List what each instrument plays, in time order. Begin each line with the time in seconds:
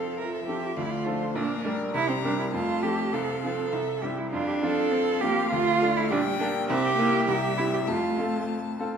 Already playing: grand piano F2 F3 C4 A4, viola F3, cello A4, violin F5
0.19 cello A#4, violin E5
0.34 cello A4
0.47 grand piano F3 C4 A4, cello G4
0.77 grand piano D2, viola A3, cello F4, violin D5
0.84 cello E4
0.90 cello F4
1.06 grand piano F3 D4 A4, violin C5
1.35 grand piano A#1, viola A#3, cello D4, violin A#4
1.65 grand piano G3 D4 A#4, viola A3
1.94 grand piano C2, viola G3, cello E4, violin A#5
2.10 cello C4
2.23 grand piano G3 C4 A#4, cello D4
2.39 cello E4
2.53 grand piano F2, viola A3, cello F4, violin A5
2.83 grand piano F3 C4 A4, cello G4
3.13 grand piano C2, viola C4, cello A4, violin F5
3.43 grand piano F3 C4 F4, cello A4
3.72 grand piano C2, violin E5
4.02 grand piano G3 C4 E4, cello G4
4.19 cello E4
4.32 grand piano F2, viola D4, cello F4, violin F5
4.48 cello G4
4.62 grand piano F3 C4 F4, cello A4
4.92 viola C4
5.21 grand piano F3 C4 F4, viola A#3, cello G4
5.51 grand piano D2, viola A3, cello F4
5.82 grand piano A3 D4 F4
5.97 cello E4
6.10 grand piano A#1, viola G3, cello D4, violin G5
6.39 grand piano A#3 D4 G4, viola D4
6.68 grand piano C2, viola C4, cello G4, violin E5
6.97 viola A#3, grand piano A#3 E4 G4
7.27 grand piano C2, viola G3, violin E5
7.57 grand piano C4 E4 G4, cello E4
7.73 cello G4
7.87 grand piano F2, viola A3, cello F4, violin A5
8.18 grand piano C4 F4 A4
8.79 grand piano C4 F4 A4